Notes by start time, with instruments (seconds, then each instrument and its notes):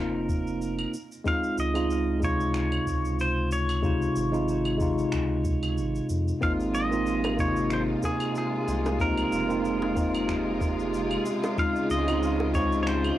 Already playing: sub bass F1, tine electric piano A#3 C4 D#4 F4, pedal steel guitar A#4
0.29 kick, cabasa
0.47 cabasa
0.62 cabasa
0.79 claves
0.94 cabasa
1.12 cabasa
1.24 tine electric piano G#3 C4 D#4 F4, pedal steel guitar F5, kick, cabasa
1.44 cabasa
1.58 sub bass C#2, pedal steel guitar D#5, cabasa
1.74 tine electric piano G#3 C4 D#4 F4, cabasa, claves
1.91 cabasa
2.20 tine electric piano C3 G#3 D#4, kick, cabasa
2.24 tine electric piano F4, pedal steel guitar C#5
2.40 cabasa
2.54 finger snap, cabasa
2.72 claves
2.87 sub bass C#2, kick, cabasa
3.05 cabasa
3.19 pedal steel guitar C5, cabasa
3.51 pedal steel guitar C#5, cabasa
3.69 cabasa, claves
3.82 tine electric piano C3 G#3 D#4 F4, kick, cabasa
4.02 cabasa
4.16 sub bass G#1, cabasa
4.32 tine electric piano G#3 C4 D#4 F4, cabasa
4.49 cabasa
4.65 claves
4.78 tine electric piano C3 G#3 D#4, kick, cabasa
4.82 tine electric piano F4
4.99 cabasa
5.12 sub bass C#2, finger snap, kick, cabasa
5.45 kick, cabasa
5.63 cabasa, claves
5.78 sub bass G#1, cabasa
5.95 cabasa
6.09 sub bass F2, cabasa
6.28 cabasa
6.41 sub bass G#1, string section C3 G#3 F4, tine electric piano A#3 C4 D#4 F4, pedal steel guitar F5, kick, cabasa
6.60 cabasa
6.74 pedal steel guitar D#5, cabasa
6.91 tine electric piano A#3 C4 D#4 F4, cabasa
7.06 cabasa
7.24 high bongo, claves
7.36 tine electric piano C3 A#3 D#4, pedal steel guitar C#5, kick, cabasa
7.41 tine electric piano F4
7.56 cabasa
7.70 pedal steel guitar C5, finger snap, cabasa
8.03 pedal steel guitar G#4, kick, high bongo, cabasa
8.20 cabasa, claves
8.35 pedal steel guitar G#4, cabasa
8.68 sub bass C2, cabasa
8.86 high bongo, cabasa
9.00 tine electric piano A#3 C4 D#4 F4, pedal steel guitar A#4, kick, cabasa
9.18 cabasa, claves
9.32 sub bass F1, cabasa
9.49 tine electric piano A#3 C4 D#4 F4, cabasa
9.65 cabasa
9.82 high bongo
9.95 tine electric piano A#3 C4 D#4, kick, cabasa
9.99 tine electric piano F4
10.15 cabasa, claves
10.29 finger snap, kick, cabasa
10.61 kick, high bongo, cabasa
10.80 cabasa
10.94 cabasa
11.11 claves
11.26 string section C#3, cabasa
11.44 high bongo, cabasa
11.57 tine electric piano G#3 C4 D#4 F4, pedal steel guitar F5, kick, cabasa
11.76 cabasa
11.90 sub bass C#2, pedal steel guitar D#5, cabasa
12.08 tine electric piano G#3 C4 D#4 F4, cabasa, claves
12.23 cabasa
12.40 high bongo
12.54 tine electric piano G#3 C4 D#4, pedal steel guitar C#5, kick, cabasa
12.58 tine electric piano F4
12.72 cabasa
12.83 pedal steel guitar C#5
12.87 pedal steel guitar C5, finger snap, cabasa
13.04 claves